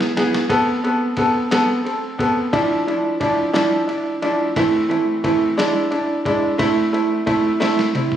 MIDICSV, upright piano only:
0, 0, Header, 1, 2, 480
1, 0, Start_track
1, 0, Key_signature, 0, "minor"
1, 0, Tempo, 677201
1, 353, Time_signature, 6, 3, 24, 8
1, 5788, End_track
2, 0, Start_track
2, 0, Title_t, "Upright piano"
2, 0, Program_c, 0, 0
2, 118, Note_on_c, 0, 59, 67
2, 119, Note_on_c, 0, 68, 87
2, 120, Note_on_c, 0, 64, 65
2, 299, Note_off_c, 0, 59, 0
2, 300, Note_off_c, 0, 64, 0
2, 300, Note_off_c, 0, 68, 0
2, 350, Note_on_c, 0, 60, 86
2, 351, Note_on_c, 0, 59, 92
2, 353, Note_on_c, 0, 69, 104
2, 535, Note_off_c, 0, 60, 0
2, 536, Note_off_c, 0, 59, 0
2, 537, Note_off_c, 0, 69, 0
2, 594, Note_on_c, 0, 59, 72
2, 597, Note_on_c, 0, 60, 61
2, 599, Note_on_c, 0, 69, 76
2, 777, Note_off_c, 0, 59, 0
2, 779, Note_off_c, 0, 60, 0
2, 780, Note_off_c, 0, 69, 0
2, 832, Note_on_c, 0, 59, 76
2, 836, Note_on_c, 0, 60, 66
2, 838, Note_on_c, 0, 69, 91
2, 1016, Note_off_c, 0, 59, 0
2, 1018, Note_off_c, 0, 60, 0
2, 1019, Note_off_c, 0, 69, 0
2, 1072, Note_on_c, 0, 59, 94
2, 1075, Note_on_c, 0, 60, 83
2, 1077, Note_on_c, 0, 69, 107
2, 1256, Note_off_c, 0, 59, 0
2, 1258, Note_off_c, 0, 60, 0
2, 1259, Note_off_c, 0, 69, 0
2, 1307, Note_on_c, 0, 60, 72
2, 1311, Note_on_c, 0, 69, 73
2, 1494, Note_off_c, 0, 60, 0
2, 1495, Note_off_c, 0, 69, 0
2, 1549, Note_on_c, 0, 59, 74
2, 1558, Note_on_c, 0, 60, 70
2, 1558, Note_on_c, 0, 69, 86
2, 1735, Note_off_c, 0, 59, 0
2, 1739, Note_off_c, 0, 60, 0
2, 1739, Note_off_c, 0, 69, 0
2, 1792, Note_on_c, 0, 53, 97
2, 1792, Note_on_c, 0, 62, 90
2, 1794, Note_on_c, 0, 64, 108
2, 1976, Note_off_c, 0, 53, 0
2, 1976, Note_off_c, 0, 62, 0
2, 1977, Note_off_c, 0, 64, 0
2, 2033, Note_on_c, 0, 53, 65
2, 2036, Note_on_c, 0, 62, 68
2, 2038, Note_on_c, 0, 64, 78
2, 2216, Note_off_c, 0, 53, 0
2, 2218, Note_off_c, 0, 62, 0
2, 2219, Note_off_c, 0, 64, 0
2, 2269, Note_on_c, 0, 53, 76
2, 2270, Note_on_c, 0, 62, 79
2, 2275, Note_on_c, 0, 64, 81
2, 2455, Note_off_c, 0, 53, 0
2, 2455, Note_off_c, 0, 62, 0
2, 2457, Note_off_c, 0, 64, 0
2, 2505, Note_on_c, 0, 62, 91
2, 2506, Note_on_c, 0, 53, 101
2, 2510, Note_on_c, 0, 64, 105
2, 2692, Note_off_c, 0, 62, 0
2, 2693, Note_off_c, 0, 53, 0
2, 2695, Note_off_c, 0, 64, 0
2, 2743, Note_on_c, 0, 62, 68
2, 2748, Note_on_c, 0, 64, 78
2, 2931, Note_off_c, 0, 62, 0
2, 2934, Note_off_c, 0, 64, 0
2, 2992, Note_on_c, 0, 53, 72
2, 2992, Note_on_c, 0, 62, 77
2, 2995, Note_on_c, 0, 64, 88
2, 3176, Note_off_c, 0, 53, 0
2, 3176, Note_off_c, 0, 62, 0
2, 3177, Note_off_c, 0, 64, 0
2, 3235, Note_on_c, 0, 57, 91
2, 3237, Note_on_c, 0, 52, 92
2, 3238, Note_on_c, 0, 64, 110
2, 3243, Note_on_c, 0, 60, 91
2, 3417, Note_off_c, 0, 57, 0
2, 3418, Note_off_c, 0, 52, 0
2, 3419, Note_off_c, 0, 64, 0
2, 3421, Note_off_c, 0, 60, 0
2, 3465, Note_on_c, 0, 52, 65
2, 3466, Note_on_c, 0, 60, 67
2, 3467, Note_on_c, 0, 57, 67
2, 3471, Note_on_c, 0, 64, 78
2, 3652, Note_off_c, 0, 52, 0
2, 3652, Note_off_c, 0, 60, 0
2, 3653, Note_off_c, 0, 57, 0
2, 3655, Note_off_c, 0, 64, 0
2, 3713, Note_on_c, 0, 52, 85
2, 3713, Note_on_c, 0, 57, 77
2, 3714, Note_on_c, 0, 60, 71
2, 3719, Note_on_c, 0, 64, 85
2, 3896, Note_off_c, 0, 52, 0
2, 3896, Note_off_c, 0, 57, 0
2, 3896, Note_off_c, 0, 60, 0
2, 3899, Note_off_c, 0, 64, 0
2, 3949, Note_on_c, 0, 56, 91
2, 3951, Note_on_c, 0, 62, 89
2, 3953, Note_on_c, 0, 64, 100
2, 4134, Note_off_c, 0, 56, 0
2, 4135, Note_off_c, 0, 62, 0
2, 4136, Note_off_c, 0, 64, 0
2, 4186, Note_on_c, 0, 62, 70
2, 4191, Note_on_c, 0, 64, 74
2, 4373, Note_off_c, 0, 62, 0
2, 4375, Note_off_c, 0, 64, 0
2, 4432, Note_on_c, 0, 56, 78
2, 4436, Note_on_c, 0, 62, 71
2, 4438, Note_on_c, 0, 64, 87
2, 4616, Note_off_c, 0, 56, 0
2, 4618, Note_off_c, 0, 62, 0
2, 4618, Note_off_c, 0, 64, 0
2, 4666, Note_on_c, 0, 57, 98
2, 4668, Note_on_c, 0, 60, 87
2, 4672, Note_on_c, 0, 64, 111
2, 4852, Note_off_c, 0, 57, 0
2, 4854, Note_off_c, 0, 60, 0
2, 4856, Note_off_c, 0, 64, 0
2, 4909, Note_on_c, 0, 57, 70
2, 4909, Note_on_c, 0, 60, 61
2, 4912, Note_on_c, 0, 64, 78
2, 5094, Note_off_c, 0, 57, 0
2, 5094, Note_off_c, 0, 60, 0
2, 5095, Note_off_c, 0, 64, 0
2, 5148, Note_on_c, 0, 57, 80
2, 5149, Note_on_c, 0, 60, 72
2, 5151, Note_on_c, 0, 64, 92
2, 5333, Note_off_c, 0, 57, 0
2, 5334, Note_off_c, 0, 60, 0
2, 5335, Note_off_c, 0, 64, 0
2, 5387, Note_on_c, 0, 57, 100
2, 5389, Note_on_c, 0, 60, 82
2, 5390, Note_on_c, 0, 64, 106
2, 5573, Note_off_c, 0, 57, 0
2, 5574, Note_off_c, 0, 60, 0
2, 5575, Note_off_c, 0, 64, 0
2, 5634, Note_on_c, 0, 60, 67
2, 5639, Note_on_c, 0, 64, 69
2, 5788, Note_off_c, 0, 60, 0
2, 5788, Note_off_c, 0, 64, 0
2, 5788, End_track
0, 0, End_of_file